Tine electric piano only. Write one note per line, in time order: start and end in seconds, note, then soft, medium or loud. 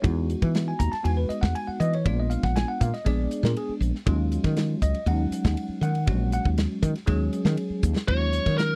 0.02 0.92 G#3 medium
0.02 0.92 B3 medium
0.02 0.92 D#4 medium
0.02 0.93 F#4 medium
0.68 0.80 G#5 medium
0.79 0.91 A#5 loud
0.92 1.04 A5 medium
1.03 1.93 G#3 medium
1.03 1.93 B3 medium
1.03 1.94 D#4 medium
1.03 1.93 F#4 medium
1.03 1.17 G#5 medium
1.17 1.29 B4 medium
1.29 1.42 D#5 medium
1.41 1.54 F#5 medium
1.55 1.67 G#5 medium
1.67 1.80 F#5 medium
1.80 1.92 D#5 loud
1.95 2.06 C#5 medium
2.05 2.94 G#3 medium
2.05 2.94 B3 medium
2.05 2.94 D4 medium
2.05 2.95 F4 medium
2.05 2.18 D5 medium
2.20 2.31 D#5 medium
2.30 2.43 F5 medium
2.44 2.56 F#5 medium
2.56 2.68 G#5 loud
2.68 2.80 F#5 medium
2.81 2.93 F5 medium
2.94 3.06 D#5 medium
3.05 3.94 G#3 medium
3.05 3.95 B3 medium
3.05 3.95 D4 medium
3.05 3.56 G#4 medium
3.05 3.42 D5 medium
3.45 3.56 A#4 medium
3.57 3.72 G#4 medium
4.06 4.95 F#3 medium
4.06 4.96 G#3 medium
4.06 4.96 C#4 medium
4.06 4.96 F4 medium
4.82 5.06 D#5 medium
5.06 5.96 F#3 medium
5.06 5.96 G#3 medium
5.06 5.96 C#4 medium
5.06 5.96 D#4 medium
5.06 5.79 F#5 medium
5.83 6.29 F#5 loud
6.07 6.96 F#3 medium
6.07 6.96 G#3 medium
6.07 6.97 C#4 medium
6.07 6.97 F#4 medium
6.34 6.48 F#5 loud
7.06 7.96 F#3 loud
7.06 7.96 G#3 medium
7.06 7.96 C#4 medium
7.06 7.96 G#4 loud
8.08 8.75 F#3 medium
8.08 8.75 G#3 medium
8.08 8.75 C#4 medium
8.08 8.75 F4 medium